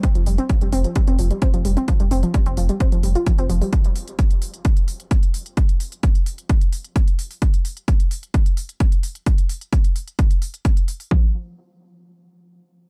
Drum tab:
HH |xxoxxxoxxxoxxxox|xxoxxxoxxxoxxxoo|xxoxxxoxxxoxxxox|xxoxxxoxxxoxxxoo|
BD |o---o---o---o---|o---o---o---o---|o---o---o---o---|o---o---o---o---|

HH |xxoxxxoxxxoxxxox|xxoxxxoxxxoxxxoo|----------------|
BD |o---o---o---o---|o---o---o---o---|o---------------|